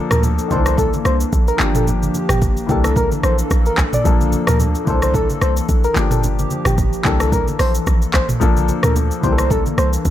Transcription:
Already playing: analog synth pad F3 A#3 D4 A4, grand piano F3 A#3 D4 A4
0.11 808-style bass D2, soft synth lead A#4, cross-stick, mid tom, shaker
0.23 low conga, shaker
0.38 shaker
0.48 808-style bass C2, grand piano D#3 A#3 D4, analog synth pad E3 A#3, soft synth lead C5, kick, high conga, low conga, shaker
0.53 grand piano E3 A4
0.66 soft synth lead C5, cross-stick, high conga, shaker
0.77 soft synth lead A4, kick, low conga, shaker
0.93 high conga, shaker
1.05 808-style bass C2, soft synth lead C5, cross-stick, shaker
1.20 shaker
1.33 808-style bass A#1, kick, shaker
1.48 soft synth lead A#4, shaker
1.57 808-style bass G1, grand piano F3 A#3 D4, analog synth pad F3 A#3 G4, clap, shaker
1.62 grand piano G4
1.75 soft synth lead A4, mid tom, shaker
1.87 low conga, shaker
2.03 high conga, shaker
2.14 high conga, shaker
2.29 808-style bass G1, soft synth lead G4, cross-stick, mid tom, shaker
2.41 kick, low conga, shaker
2.57 shaker
2.66 808-style bass C2, grand piano E3 A#3 D4, analog synth pad E3 A4, soft synth lead G4, kick, shaker
2.70 grand piano A4, high conga, low conga
2.84 soft synth lead A4, cross-stick, high conga, shaker
2.96 soft synth lead A#4, kick, low conga, shaker
3.12 high conga, shaker
3.23 808-style bass A#1, soft synth lead C5, cross-stick, shaker
3.38 shaker
3.51 808-style bass A#1, kick, cross-stick, shaker
3.66 soft synth lead A#4, shaker
3.78 808-style bass A1, kick, cross-stick, clap, shaker
3.93 soft synth lead D5, mid tom, shaker
4.04 808-style bass A#1, grand piano F3 A#3 D4 A4, analog synth pad F3, kick, low conga, shaker
4.21 high conga, shaker
4.32 high conga, shaker
4.47 808-style bass D2, soft synth lead A#4, cross-stick, mid tom, shaker
4.60 low conga, shaker
4.75 shaker
4.85 808-style bass C2, grand piano E3 A#3 D4, analog synth pad E3 A4, soft synth lead C5, kick, high conga, low conga, shaker
4.90 grand piano A4
5.02 soft synth lead C5, cross-stick, high conga, shaker
5.14 soft synth lead A4, kick, low conga, shaker
5.30 high conga, shaker
5.42 808-style bass C2, soft synth lead C5, cross-stick, shaker
5.57 shaker
5.69 808-style bass A#1, kick, shaker
5.84 soft synth lead A#4, shaker
5.94 808-style bass G1, grand piano F3 A#3 D4, analog synth pad F3 G4, clap, shaker
5.99 grand piano G4
6.11 soft synth lead A4, mid tom, shaker
6.23 low conga, shaker
6.39 high conga, shaker
6.50 high conga, shaker
6.65 808-style bass G1, soft synth lead G4, cross-stick, mid tom, shaker
6.78 kick, low conga, shaker
6.93 shaker
7.03 808-style bass C2, grand piano E3 A#3 D4, analog synth pad E3 A#3 A4, soft synth lead G4, kick, clap, high conga, low conga, shaker
7.07 grand piano A4
7.20 soft synth lead A4, cross-stick, high conga, shaker
7.32 soft synth lead A#4, kick, low conga, shaker
7.48 high conga, shaker
7.59 808-style bass A#1, soft synth lead C5, cross-stick, open hi-hat, shaker
7.75 shaker
7.87 808-style bass A#1, kick, cross-stick, shaker
8.02 shaker
8.14 808-style bass A1, soft synth lead C5, kick, cross-stick, clap, shaker
8.29 mid tom, shaker
8.40 808-style bass A#1, grand piano F3 A#3 D4 A4, analog synth pad F3 D4, kick, low conga, shaker
8.57 high conga, shaker
8.68 high conga, shaker
8.83 808-style bass D2, soft synth lead A#4, cross-stick, mid tom, shaker
8.96 low conga, shaker
9.11 shaker
9.21 808-style bass C2, grand piano E3 A#3 D4, analog synth pad E3, soft synth lead C5, kick, high conga, low conga, shaker
9.26 grand piano G4
9.32 grand piano A4
9.38 soft synth lead C5, cross-stick, high conga, shaker
9.50 soft synth lead A4, kick, low conga, shaker
9.66 high conga, shaker
9.78 808-style bass C2, soft synth lead C5, cross-stick, shaker
9.93 shaker
10.05 808-style bass A#1, kick, shaker

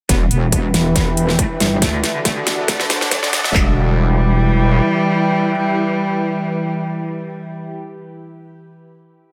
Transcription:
0.09 wobble bass E1, ambient pad E3 E4 G4 B4, cello B3, analog synth pad E4, kick, snare, closed hi-hat, riser
0.21 cello E3
0.26 analog synth pad B4
0.31 wobble bass E1, cello B3, closed hi-hat
0.42 cello E3
0.52 cello B3, kick, closed hi-hat
0.64 cello E3
0.72 wobble bass E1, cello E3, analog synth pad G5, snare, closed hi-hat
0.85 cello E3
0.96 cello B3, kick, snare, closed hi-hat
1.07 cello E3
1.17 cello E3, closed hi-hat
1.28 cello E3, snare
1.39 cello A3, kick, closed hi-hat
1.50 cello E3
1.60 wobble bass G1, cello E3, snare, closed hi-hat
1.72 cello E3
1.82 wobble bass D2, ambient pad D3 D4 F#4 A4, cello A3, analog synth pad D4, kick, snare, closed hi-hat
1.93 cello D3
2.03 cello A3, snare, closed hi-hat
2.15 cello D3, analog synth pad A4
2.25 cello A3, analog synth pad F#5, kick, snare, closed hi-hat
2.36 cello D3
2.47 cello D3, snare, closed hi-hat
2.58 cello D3
2.68 cello A3, kick, snare, closed hi-hat
2.79 cello D3, snare
2.90 cello D3, snare, closed hi-hat
3.01 cello D3, snare
3.11 wobble bass D2, cello F#3, kick, snare, closed hi-hat
3.23 wobble bass D2, cello D3, snare
3.33 cello D3, snare, closed hi-hat
3.44 wobble bass D2, cello D3, snare
3.55 wobble bass E1, ambient pad E3 E4 G4 B4, cello G3, analog synth pad E4, kick, clap
3.61 analog synth pad B4
3.68 analog synth pad G5

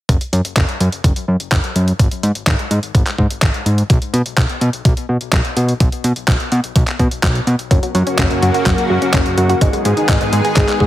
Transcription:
0.09 analog synth bass F#1, kick, closed hi-hat
0.21 closed hi-hat
0.33 analog synth bass F#2, closed hi-hat
0.45 closed hi-hat
0.57 analog synth bass F#1, kick, clap, closed hi-hat
0.69 closed hi-hat
0.80 analog synth bass F#2, closed hi-hat
0.92 closed hi-hat
1.04 analog synth bass F#1, kick, closed hi-hat
1.16 closed hi-hat
1.28 analog synth bass F#2
1.40 closed hi-hat
1.52 analog synth bass F#1, kick, clap, closed hi-hat
1.64 closed hi-hat
1.76 analog synth bass F#2, closed hi-hat
1.88 closed hi-hat
1.99 analog synth bass G#1, kick, closed hi-hat
2.11 closed hi-hat
2.23 analog synth bass G#2, closed hi-hat
2.35 closed hi-hat
2.47 analog synth bass G#1, kick, clap, closed hi-hat
2.59 closed hi-hat
2.71 analog synth bass G#2, closed hi-hat
2.83 closed hi-hat
2.95 analog synth bass G#1, kick, closed hi-hat
3.07 clap, closed hi-hat
3.18 analog synth bass G#2, kick
3.30 closed hi-hat
3.42 analog synth bass G#1, kick, clap, closed hi-hat
3.54 closed hi-hat
3.66 analog synth bass G#2, closed hi-hat
3.78 closed hi-hat
3.90 analog synth bass B1, kick, closed hi-hat
4.02 closed hi-hat
4.13 analog synth bass B2, closed hi-hat
4.26 closed hi-hat
4.37 analog synth bass B1, kick, clap, closed hi-hat
4.49 closed hi-hat
4.61 analog synth bass B2, closed hi-hat
4.73 closed hi-hat
4.85 analog synth bass B1, kick, closed hi-hat
4.97 closed hi-hat
5.09 analog synth bass B2
5.21 closed hi-hat
5.33 analog synth bass B1, kick, clap, closed hi-hat
5.45 closed hi-hat
5.57 analog synth bass B2, closed hi-hat
5.69 closed hi-hat
5.80 analog synth bass B1, kick, closed hi-hat
5.92 closed hi-hat
6.04 analog synth bass B2, closed hi-hat
6.16 closed hi-hat
6.28 analog synth bass B1, kick, clap, closed hi-hat
6.40 closed hi-hat
6.52 analog synth bass B2, closed hi-hat
6.64 closed hi-hat
6.76 analog synth bass B1, kick, closed hi-hat
6.88 clap, closed hi-hat
6.99 analog synth bass B2, kick, closed hi-hat
7.11 closed hi-hat
7.23 analog synth bass B1, kick, clap, closed hi-hat
7.35 closed hi-hat
7.47 analog synth bass B2, closed hi-hat
7.59 closed hi-hat
7.71 analog synth bass F#1, analog synth pad C#3 F#3 A#3 F#4, synth arpeggio sound F#3, kick, closed hi-hat
7.83 synth arpeggio sound F#3, closed hi-hat
7.95 analog synth bass F#2, synth arpeggio sound F#4, closed hi-hat
8.07 synth arpeggio sound C#4, closed hi-hat
8.19 analog synth bass F#1, synth arpeggio sound C#4, kick, clap, closed hi-hat
8.31 synth arpeggio sound F#2, closed hi-hat
8.42 analog synth bass F#2, synth arpeggio sound F#4, closed hi-hat
8.54 synth arpeggio sound F#4, closed hi-hat
8.66 analog synth bass F#1, synth arpeggio sound F#3, kick, clap, closed hi-hat
8.78 synth arpeggio sound F#3, closed hi-hat
8.90 analog synth bass F#2, synth arpeggio sound F#4
9.02 synth arpeggio sound C#4, closed hi-hat
9.14 analog synth bass F#1, synth arpeggio sound C#4, kick, clap, closed hi-hat
9.26 synth arpeggio sound F#2, closed hi-hat
9.38 analog synth bass F#2, synth arpeggio sound F#4, closed hi-hat
9.49 synth arpeggio sound F#4, closed hi-hat
9.61 analog synth bass G#1, analog synth pad D#3 G#3 B3 G#4, synth arpeggio sound G#3, kick, closed hi-hat
9.73 synth arpeggio sound G#3, closed hi-hat
9.85 analog synth bass G#2, synth arpeggio sound G#4, closed hi-hat
9.97 synth arpeggio sound D#4, closed hi-hat
10.09 analog synth bass G#1, synth arpeggio sound D#4, kick, clap, closed hi-hat
10.21 synth arpeggio sound G#2, closed hi-hat
10.33 analog synth bass G#2, synth arpeggio sound G#4, closed hi-hat
10.45 synth arpeggio sound G#4, closed hi-hat
10.56 analog synth bass G#1, synth arpeggio sound G#3, kick, clap, closed hi-hat
10.69 synth arpeggio sound G#3, clap, closed hi-hat
10.80 analog synth bass G#2, synth arpeggio sound G#4, kick

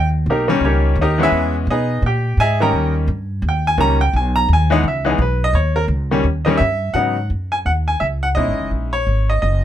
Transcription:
Already playing: upright bass D#2
0.26 upright bass B1, upright piano G4
0.30 upright piano A#3 D#4 A#4
0.48 upright piano D#3 G3 A#3 C#4
0.60 upright bass C#2
0.65 upright piano C#4 G4 A#4 C#5
0.96 upright bass D#2
1.01 upright piano D#4 G4 A#4 D#5
1.18 upright piano E3 G#3 B3 C#4
1.23 upright piano E4 G#4 B4 E5
1.32 upright bass E2
1.67 upright bass B2, upright piano G#4 D#5
1.71 upright piano D#4 B4
2.02 upright bass A#2, upright piano G5
2.07 upright piano G4
2.37 upright bass G#2, upright piano G#4 D#5 E5 G#5
2.60 upright piano D#3 G3 A#3 C#4 A#4 D#5 G5 A#5
2.72 upright bass D#2
3.08 upright bass G2
3.42 upright bass D#2
3.49 upright piano G5
3.67 upright piano G#5
3.78 upright bass C#2, upright piano D#3 G3 A#3 C#4 A#5
4.01 upright piano G5
4.13 upright bass B1, upright piano G#5
4.36 upright piano A#5
4.48 upright bass D#2
4.53 upright piano G#5
4.70 upright piano E3 G#3 B3 D#4 F#5
4.83 upright bass C#2
4.88 upright piano E5
5.05 upright piano E3 G#3 B3 D#4
5.10 upright piano G#4
5.18 upright bass B1, upright piano B4
5.44 upright piano D#5
5.53 upright bass D#2, upright piano C#5
5.76 upright piano A#4
5.88 upright bass C#2
6.11 upright piano D#3 G3 A#3 C#4
6.24 upright bass D#2
6.45 upright piano D#3 G3 A#3 C#4 D#5
6.58 upright bass G2, upright piano E5
6.94 upright bass G#2, upright piano C#3 F#3 B3 D#4 F#5
7.30 upright bass F#2
7.52 upright piano G#5
7.65 upright bass D#2, upright piano F#5
7.88 upright piano G#5
8.00 upright bass C#2, upright piano E5
8.23 upright piano F#5
8.35 upright bass B1, upright piano G#3 C#4 D#4 E4 D#5
8.47 upright bass G#1
8.59 upright bass F#1
8.71 upright bass A#1
8.93 upright piano C#5
9.07 upright bass G#1
9.30 upright piano D#5
9.42 upright bass F#1, upright piano D#5

